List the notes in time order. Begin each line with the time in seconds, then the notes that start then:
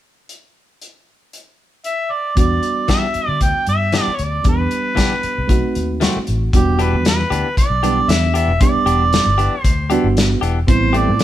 0.29 closed hi-hat
0.81 closed hi-hat
1.33 closed hi-hat
1.84 E5, closed hi-hat
2.12 D5
2.35 E2 G3 B3 D4 F#4 D5, kick, closed hi-hat
2.63 closed hi-hat
2.88 E3 B3 D4 G4 E5, kick, snare, closed hi-hat
3.14 muted fingered electric bass stroke, closed hi-hat
3.28 D3
3.41 D2 G5, kick, closed hi-hat
3.67 G2 E5, closed hi-hat
3.92 E3 B3 D4 G4, snare, closed hi-hat
4.03 D5
4.07 muted fingered electric bass stroke
4.15 C#5, closed hi-hat
4.19 D2 D5
4.44 E2 G3 B3 D4 G4, kick, closed hi-hat
4.49 B4
4.71 closed hi-hat
4.95 E3 B3 D4 G4, kick, snare, closed hi-hat
5.23 muted fingered electric bass stroke, closed hi-hat
5.38 C2
5.48 B1 A3 C4 D#4 F#4, kick, closed hi-hat
5.75 D#2, closed hi-hat
6.00 D#3 A3 C4 F#4, snare, closed hi-hat
6.16 muted fingered electric bass stroke
6.27 A1, closed hi-hat
6.53 E1 G3 B3 D4 F#4 G4, kick, closed hi-hat
6.79 E3 B3 D4 G4 B4, closed hi-hat
6.93 E2
7.05 B4, snare, closed hi-hat
7.30 D2 E3 B3 D4 G4, closed hi-hat
7.57 D5, muted fingered electric bass stroke, kick, closed hi-hat
7.70 B1
7.83 E3 G3 B3 D4 G4, closed hi-hat
8.08 E2 E5, snare, closed hi-hat
8.34 E3 B3 D4 G4 E5, closed hi-hat
8.48 E1
8.61 G3 B3 D4 G4 D5, kick, closed hi-hat
8.74 muted fingered electric bass stroke
8.86 E1 E3 B3 D4 G4, closed hi-hat
9.13 snare, closed hi-hat
9.26 G1
9.38 E3 B3 D4 G4, closed hi-hat
9.62 D2 C5, kick, closed hi-hat
9.90 E3 G3 B3 D4 F#4 G4, closed hi-hat
10.04 G1
10.17 snare, closed hi-hat
10.41 E1 E3 B3 D4 G4, closed hi-hat
10.67 A1 G3 B3 C4 E4 C5, kick, closed hi-hat
10.93 E3 A3 C4 G4, closed hi-hat
10.97 D5
11.08 A2
11.19 snare, closed hi-hat